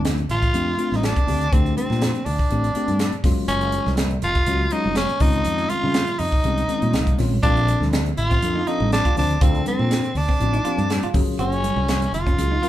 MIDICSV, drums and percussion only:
0, 0, Header, 1, 2, 480
1, 0, Start_track
1, 0, Key_signature, -2, "major"
1, 0, Tempo, 493016
1, 1486, Time_signature, 4, 2, 24, 8
1, 12353, End_track
2, 0, Start_track
2, 0, Title_t, "Drums"
2, 46, Note_on_c, 9, 42, 77
2, 52, Note_on_c, 9, 38, 102
2, 144, Note_off_c, 9, 42, 0
2, 150, Note_off_c, 9, 38, 0
2, 173, Note_on_c, 9, 42, 30
2, 271, Note_off_c, 9, 42, 0
2, 284, Note_on_c, 9, 64, 57
2, 287, Note_on_c, 9, 42, 58
2, 382, Note_off_c, 9, 64, 0
2, 384, Note_off_c, 9, 42, 0
2, 413, Note_on_c, 9, 42, 33
2, 414, Note_on_c, 9, 36, 68
2, 510, Note_off_c, 9, 42, 0
2, 511, Note_off_c, 9, 36, 0
2, 526, Note_on_c, 9, 42, 75
2, 623, Note_off_c, 9, 42, 0
2, 766, Note_on_c, 9, 42, 54
2, 863, Note_off_c, 9, 42, 0
2, 894, Note_on_c, 9, 63, 67
2, 901, Note_on_c, 9, 38, 28
2, 991, Note_off_c, 9, 63, 0
2, 999, Note_off_c, 9, 38, 0
2, 1006, Note_on_c, 9, 42, 66
2, 1012, Note_on_c, 9, 38, 91
2, 1103, Note_off_c, 9, 42, 0
2, 1109, Note_off_c, 9, 38, 0
2, 1133, Note_on_c, 9, 36, 72
2, 1138, Note_on_c, 9, 42, 31
2, 1231, Note_off_c, 9, 36, 0
2, 1235, Note_off_c, 9, 42, 0
2, 1241, Note_on_c, 9, 64, 60
2, 1247, Note_on_c, 9, 46, 70
2, 1338, Note_off_c, 9, 64, 0
2, 1345, Note_off_c, 9, 46, 0
2, 1377, Note_on_c, 9, 42, 34
2, 1475, Note_off_c, 9, 42, 0
2, 1485, Note_on_c, 9, 36, 102
2, 1488, Note_on_c, 9, 42, 73
2, 1583, Note_off_c, 9, 36, 0
2, 1585, Note_off_c, 9, 42, 0
2, 1618, Note_on_c, 9, 42, 29
2, 1715, Note_off_c, 9, 42, 0
2, 1723, Note_on_c, 9, 63, 58
2, 1730, Note_on_c, 9, 42, 58
2, 1821, Note_off_c, 9, 63, 0
2, 1827, Note_off_c, 9, 42, 0
2, 1849, Note_on_c, 9, 63, 59
2, 1862, Note_on_c, 9, 38, 35
2, 1947, Note_off_c, 9, 63, 0
2, 1959, Note_off_c, 9, 38, 0
2, 1962, Note_on_c, 9, 42, 79
2, 1968, Note_on_c, 9, 38, 99
2, 2060, Note_off_c, 9, 42, 0
2, 2065, Note_off_c, 9, 38, 0
2, 2091, Note_on_c, 9, 42, 32
2, 2189, Note_off_c, 9, 42, 0
2, 2201, Note_on_c, 9, 46, 65
2, 2202, Note_on_c, 9, 64, 58
2, 2298, Note_off_c, 9, 46, 0
2, 2299, Note_off_c, 9, 64, 0
2, 2329, Note_on_c, 9, 36, 71
2, 2427, Note_off_c, 9, 36, 0
2, 2440, Note_on_c, 9, 42, 77
2, 2537, Note_off_c, 9, 42, 0
2, 2570, Note_on_c, 9, 42, 40
2, 2668, Note_off_c, 9, 42, 0
2, 2677, Note_on_c, 9, 42, 63
2, 2775, Note_off_c, 9, 42, 0
2, 2803, Note_on_c, 9, 63, 62
2, 2804, Note_on_c, 9, 42, 38
2, 2901, Note_off_c, 9, 63, 0
2, 2902, Note_off_c, 9, 42, 0
2, 2915, Note_on_c, 9, 42, 82
2, 2921, Note_on_c, 9, 38, 99
2, 3012, Note_off_c, 9, 42, 0
2, 3018, Note_off_c, 9, 38, 0
2, 3040, Note_on_c, 9, 42, 34
2, 3138, Note_off_c, 9, 42, 0
2, 3153, Note_on_c, 9, 36, 94
2, 3154, Note_on_c, 9, 46, 67
2, 3156, Note_on_c, 9, 64, 61
2, 3159, Note_on_c, 9, 38, 31
2, 3250, Note_off_c, 9, 36, 0
2, 3251, Note_off_c, 9, 46, 0
2, 3253, Note_off_c, 9, 64, 0
2, 3257, Note_off_c, 9, 38, 0
2, 3389, Note_on_c, 9, 42, 81
2, 3487, Note_off_c, 9, 42, 0
2, 3514, Note_on_c, 9, 42, 32
2, 3611, Note_off_c, 9, 42, 0
2, 3624, Note_on_c, 9, 42, 62
2, 3632, Note_on_c, 9, 63, 55
2, 3722, Note_off_c, 9, 42, 0
2, 3730, Note_off_c, 9, 63, 0
2, 3762, Note_on_c, 9, 63, 61
2, 3763, Note_on_c, 9, 38, 34
2, 3859, Note_off_c, 9, 63, 0
2, 3861, Note_off_c, 9, 38, 0
2, 3867, Note_on_c, 9, 42, 85
2, 3873, Note_on_c, 9, 38, 102
2, 3964, Note_off_c, 9, 42, 0
2, 3970, Note_off_c, 9, 38, 0
2, 3999, Note_on_c, 9, 42, 32
2, 4096, Note_off_c, 9, 42, 0
2, 4108, Note_on_c, 9, 42, 62
2, 4113, Note_on_c, 9, 64, 53
2, 4206, Note_off_c, 9, 42, 0
2, 4210, Note_off_c, 9, 64, 0
2, 4235, Note_on_c, 9, 42, 33
2, 4238, Note_on_c, 9, 36, 66
2, 4332, Note_off_c, 9, 42, 0
2, 4335, Note_off_c, 9, 36, 0
2, 4347, Note_on_c, 9, 42, 76
2, 4444, Note_off_c, 9, 42, 0
2, 4581, Note_on_c, 9, 42, 57
2, 4679, Note_off_c, 9, 42, 0
2, 4716, Note_on_c, 9, 63, 60
2, 4813, Note_off_c, 9, 63, 0
2, 4824, Note_on_c, 9, 42, 74
2, 4829, Note_on_c, 9, 38, 99
2, 4921, Note_off_c, 9, 42, 0
2, 4927, Note_off_c, 9, 38, 0
2, 4957, Note_on_c, 9, 42, 31
2, 5054, Note_off_c, 9, 42, 0
2, 5064, Note_on_c, 9, 46, 68
2, 5067, Note_on_c, 9, 36, 87
2, 5069, Note_on_c, 9, 64, 65
2, 5161, Note_off_c, 9, 46, 0
2, 5165, Note_off_c, 9, 36, 0
2, 5167, Note_off_c, 9, 64, 0
2, 5190, Note_on_c, 9, 42, 37
2, 5288, Note_off_c, 9, 42, 0
2, 5302, Note_on_c, 9, 42, 72
2, 5399, Note_off_c, 9, 42, 0
2, 5435, Note_on_c, 9, 42, 28
2, 5532, Note_off_c, 9, 42, 0
2, 5545, Note_on_c, 9, 42, 58
2, 5547, Note_on_c, 9, 63, 58
2, 5642, Note_off_c, 9, 42, 0
2, 5645, Note_off_c, 9, 63, 0
2, 5682, Note_on_c, 9, 63, 60
2, 5779, Note_off_c, 9, 63, 0
2, 5784, Note_on_c, 9, 42, 78
2, 5790, Note_on_c, 9, 38, 105
2, 5881, Note_off_c, 9, 42, 0
2, 5887, Note_off_c, 9, 38, 0
2, 5912, Note_on_c, 9, 42, 34
2, 6010, Note_off_c, 9, 42, 0
2, 6025, Note_on_c, 9, 46, 67
2, 6038, Note_on_c, 9, 64, 55
2, 6122, Note_off_c, 9, 46, 0
2, 6135, Note_off_c, 9, 64, 0
2, 6157, Note_on_c, 9, 36, 74
2, 6254, Note_off_c, 9, 36, 0
2, 6269, Note_on_c, 9, 42, 82
2, 6367, Note_off_c, 9, 42, 0
2, 6402, Note_on_c, 9, 42, 40
2, 6500, Note_off_c, 9, 42, 0
2, 6513, Note_on_c, 9, 42, 60
2, 6610, Note_off_c, 9, 42, 0
2, 6640, Note_on_c, 9, 42, 37
2, 6641, Note_on_c, 9, 63, 58
2, 6738, Note_off_c, 9, 42, 0
2, 6739, Note_off_c, 9, 63, 0
2, 6752, Note_on_c, 9, 42, 72
2, 6757, Note_on_c, 9, 38, 94
2, 6849, Note_off_c, 9, 42, 0
2, 6855, Note_off_c, 9, 38, 0
2, 6882, Note_on_c, 9, 36, 69
2, 6886, Note_on_c, 9, 42, 33
2, 6980, Note_off_c, 9, 36, 0
2, 6983, Note_off_c, 9, 42, 0
2, 6993, Note_on_c, 9, 64, 60
2, 6995, Note_on_c, 9, 46, 69
2, 7001, Note_on_c, 9, 38, 30
2, 7090, Note_off_c, 9, 64, 0
2, 7093, Note_off_c, 9, 46, 0
2, 7099, Note_off_c, 9, 38, 0
2, 7124, Note_on_c, 9, 63, 55
2, 7221, Note_off_c, 9, 63, 0
2, 7235, Note_on_c, 9, 36, 94
2, 7237, Note_on_c, 9, 42, 84
2, 7332, Note_off_c, 9, 36, 0
2, 7335, Note_off_c, 9, 42, 0
2, 7368, Note_on_c, 9, 42, 31
2, 7465, Note_off_c, 9, 42, 0
2, 7474, Note_on_c, 9, 63, 54
2, 7480, Note_on_c, 9, 42, 61
2, 7572, Note_off_c, 9, 63, 0
2, 7577, Note_off_c, 9, 42, 0
2, 7606, Note_on_c, 9, 63, 58
2, 7614, Note_on_c, 9, 38, 35
2, 7703, Note_off_c, 9, 63, 0
2, 7712, Note_off_c, 9, 38, 0
2, 7719, Note_on_c, 9, 42, 79
2, 7725, Note_on_c, 9, 38, 101
2, 7816, Note_off_c, 9, 42, 0
2, 7822, Note_off_c, 9, 38, 0
2, 7848, Note_on_c, 9, 42, 35
2, 7945, Note_off_c, 9, 42, 0
2, 7957, Note_on_c, 9, 64, 58
2, 7959, Note_on_c, 9, 42, 56
2, 8054, Note_off_c, 9, 64, 0
2, 8056, Note_off_c, 9, 42, 0
2, 8089, Note_on_c, 9, 36, 69
2, 8094, Note_on_c, 9, 42, 36
2, 8187, Note_off_c, 9, 36, 0
2, 8191, Note_off_c, 9, 42, 0
2, 8202, Note_on_c, 9, 42, 83
2, 8299, Note_off_c, 9, 42, 0
2, 8443, Note_on_c, 9, 42, 55
2, 8540, Note_off_c, 9, 42, 0
2, 8570, Note_on_c, 9, 63, 73
2, 8668, Note_off_c, 9, 63, 0
2, 8688, Note_on_c, 9, 42, 72
2, 8694, Note_on_c, 9, 38, 98
2, 8786, Note_off_c, 9, 42, 0
2, 8792, Note_off_c, 9, 38, 0
2, 8813, Note_on_c, 9, 36, 71
2, 8817, Note_on_c, 9, 42, 34
2, 8910, Note_off_c, 9, 36, 0
2, 8914, Note_off_c, 9, 42, 0
2, 8921, Note_on_c, 9, 64, 72
2, 8928, Note_on_c, 9, 46, 67
2, 9018, Note_off_c, 9, 64, 0
2, 9026, Note_off_c, 9, 46, 0
2, 9057, Note_on_c, 9, 42, 34
2, 9154, Note_off_c, 9, 42, 0
2, 9165, Note_on_c, 9, 36, 107
2, 9165, Note_on_c, 9, 42, 75
2, 9262, Note_off_c, 9, 36, 0
2, 9263, Note_off_c, 9, 42, 0
2, 9294, Note_on_c, 9, 42, 32
2, 9391, Note_off_c, 9, 42, 0
2, 9403, Note_on_c, 9, 63, 63
2, 9406, Note_on_c, 9, 42, 58
2, 9501, Note_off_c, 9, 63, 0
2, 9503, Note_off_c, 9, 42, 0
2, 9535, Note_on_c, 9, 63, 70
2, 9633, Note_off_c, 9, 63, 0
2, 9648, Note_on_c, 9, 42, 79
2, 9654, Note_on_c, 9, 38, 97
2, 9746, Note_off_c, 9, 42, 0
2, 9752, Note_off_c, 9, 38, 0
2, 9776, Note_on_c, 9, 42, 32
2, 9873, Note_off_c, 9, 42, 0
2, 9885, Note_on_c, 9, 46, 74
2, 9889, Note_on_c, 9, 64, 61
2, 9983, Note_off_c, 9, 46, 0
2, 9986, Note_off_c, 9, 64, 0
2, 10016, Note_on_c, 9, 36, 65
2, 10114, Note_off_c, 9, 36, 0
2, 10131, Note_on_c, 9, 42, 78
2, 10228, Note_off_c, 9, 42, 0
2, 10257, Note_on_c, 9, 42, 39
2, 10355, Note_off_c, 9, 42, 0
2, 10368, Note_on_c, 9, 42, 62
2, 10466, Note_off_c, 9, 42, 0
2, 10490, Note_on_c, 9, 63, 69
2, 10500, Note_on_c, 9, 42, 36
2, 10587, Note_off_c, 9, 63, 0
2, 10597, Note_off_c, 9, 42, 0
2, 10613, Note_on_c, 9, 42, 77
2, 10619, Note_on_c, 9, 38, 91
2, 10710, Note_off_c, 9, 42, 0
2, 10716, Note_off_c, 9, 38, 0
2, 10737, Note_on_c, 9, 42, 36
2, 10834, Note_off_c, 9, 42, 0
2, 10844, Note_on_c, 9, 64, 73
2, 10849, Note_on_c, 9, 36, 87
2, 10849, Note_on_c, 9, 46, 67
2, 10941, Note_off_c, 9, 64, 0
2, 10946, Note_off_c, 9, 46, 0
2, 10947, Note_off_c, 9, 36, 0
2, 11090, Note_on_c, 9, 42, 79
2, 11188, Note_off_c, 9, 42, 0
2, 11219, Note_on_c, 9, 42, 34
2, 11316, Note_off_c, 9, 42, 0
2, 11324, Note_on_c, 9, 63, 64
2, 11333, Note_on_c, 9, 42, 64
2, 11421, Note_off_c, 9, 63, 0
2, 11430, Note_off_c, 9, 42, 0
2, 11453, Note_on_c, 9, 63, 73
2, 11550, Note_off_c, 9, 63, 0
2, 11571, Note_on_c, 9, 42, 84
2, 11577, Note_on_c, 9, 38, 102
2, 11668, Note_off_c, 9, 42, 0
2, 11674, Note_off_c, 9, 38, 0
2, 11703, Note_on_c, 9, 42, 38
2, 11800, Note_off_c, 9, 42, 0
2, 11806, Note_on_c, 9, 64, 66
2, 11820, Note_on_c, 9, 42, 64
2, 11903, Note_off_c, 9, 64, 0
2, 11917, Note_off_c, 9, 42, 0
2, 11942, Note_on_c, 9, 36, 66
2, 11949, Note_on_c, 9, 42, 34
2, 12039, Note_off_c, 9, 36, 0
2, 12046, Note_off_c, 9, 42, 0
2, 12059, Note_on_c, 9, 42, 88
2, 12156, Note_off_c, 9, 42, 0
2, 12297, Note_on_c, 9, 42, 56
2, 12353, Note_off_c, 9, 42, 0
2, 12353, End_track
0, 0, End_of_file